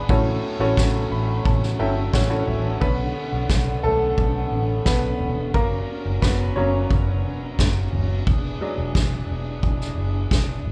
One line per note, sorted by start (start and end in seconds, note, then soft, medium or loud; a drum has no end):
0.00 0.11 B4 medium
0.00 0.26 D5 medium
0.00 0.11 F#5 medium
0.00 0.11 G#5 medium
0.00 0.25 B5 medium
0.08 0.37 A1 loud
0.08 1.08 A2 medium
0.08 2.79 F#3 medium
0.08 2.79 A3 medium
0.08 2.79 C#4 medium
0.08 0.54 C#4 loud
0.08 0.53 E4 medium
0.08 0.54 F#4 medium
0.08 0.54 A4 medium
0.08 0.54 C#5 loud
0.08 kick loud
0.08 ride medium
0.44 ride medium
0.59 0.74 A1 medium
0.59 1.63 C#4 loud
0.59 1.63 E4 medium
0.59 1.63 F#4 medium
0.59 1.63 A4 medium
0.59 1.63 C#5 loud
0.77 1.05 A1 loud
0.77 kick loud
0.77 snare loud
0.77 ride medium
1.11 1.39 A1 loud
1.11 1.43 B5 medium
1.11 ride medium
1.45 1.73 A1 loud
1.45 1.77 A5 medium
1.45 kick loud
1.45 ride medium
1.63 snare soft
1.79 2.07 G1 medium
1.79 2.24 F#3 medium
1.79 2.13 C#4 medium
1.79 2.24 E4 medium
1.79 2.23 A4 medium
1.79 2.24 E5 medium
1.79 2.11 G5 medium
1.79 ride medium
2.13 2.41 A1 loud
2.13 2.28 C#4 medium
2.13 2.29 C#5 loud
2.13 2.45 F#5 medium
2.13 kick loud
2.13 snare loud
2.13 ride medium
2.30 2.74 C#4 medium
2.30 2.74 E4 medium
2.30 2.74 F#4 medium
2.30 2.74 A4 medium
2.30 2.75 C#5 medium
2.47 2.76 A1 medium
2.47 2.79 E5 medium
2.47 floor tom medium
2.47 ride medium
2.81 3.09 B1 medium
2.81 5.50 D3 medium
2.81 5.52 D3 medium
2.81 3.80 B3 medium
2.81 5.51 B3 medium
2.81 5.52 C#4 medium
2.81 5.51 C#4 medium
2.81 3.80 B4 medium
2.81 kick loud
2.81 ride medium
3.16 ride medium
3.32 3.47 B1 medium
3.49 3.78 B1 medium
3.49 kick loud
3.49 snare medium
3.49 ride medium
3.83 4.12 B1 medium
3.83 4.83 A3 medium
3.83 4.89 A4 medium
3.83 floor tom medium
3.83 ride medium
4.17 4.46 B1 medium
4.17 kick loud
4.17 ride medium
4.51 4.80 A1 medium
4.51 ride medium
4.85 5.14 B1 loud
4.85 5.51 B3 medium
4.85 5.56 B4 medium
4.85 kick loud
4.85 snare loud
4.85 ride medium
5.20 5.54 E1 medium
5.20 floor tom medium
5.20 ride medium
5.54 5.82 F#1 loud
5.54 8.24 F#3 medium
5.54 6.19 A#3 medium
5.54 8.24 C#4 medium
5.54 6.24 A#4 medium
5.54 8.24 A#5 medium
5.54 kick loud
5.54 ride medium
5.88 ride medium
6.05 6.19 F#1 medium
6.22 6.50 F#1 medium
6.22 6.55 B3 medium
6.22 6.54 B4 medium
6.22 kick loud
6.22 snare loud
6.22 ride medium
6.56 6.84 F#1 medium
6.56 8.23 F#3 medium
6.56 8.23 A#3 medium
6.56 7.90 C#4 medium
6.56 7.88 C#5 medium
6.56 ride medium
6.91 7.24 F#1 loud
6.91 kick loud
6.91 ride medium
7.24 7.52 E1 loud
7.24 ride medium
7.59 7.87 F#1 medium
7.59 kick loud
7.59 snare loud
7.59 ride medium
7.93 8.21 F#1 medium
7.93 floor tom medium
7.93 ride medium
8.27 8.55 E1 medium
8.27 10.72 E3 medium
8.27 10.72 D4 medium
8.27 10.72 G#4 medium
8.27 kick loud
8.27 ride medium
8.61 9.06 F#3 medium
8.61 9.07 G#3 medium
8.61 9.07 D4 medium
8.61 ride soft
8.78 8.92 E1 medium
8.95 9.23 E1 loud
8.95 kick loud
8.95 snare medium
9.29 9.57 E1 loud
9.29 ride medium
9.63 9.91 E1 loud
9.63 kick loud
9.63 ride medium
9.81 snare soft
9.97 10.25 F#1 medium
9.97 ride medium
10.31 10.59 E1 loud
10.31 kick loud
10.31 snare loud
10.31 ride medium
10.66 10.72 G#1 medium
10.66 floor tom medium
10.66 ride medium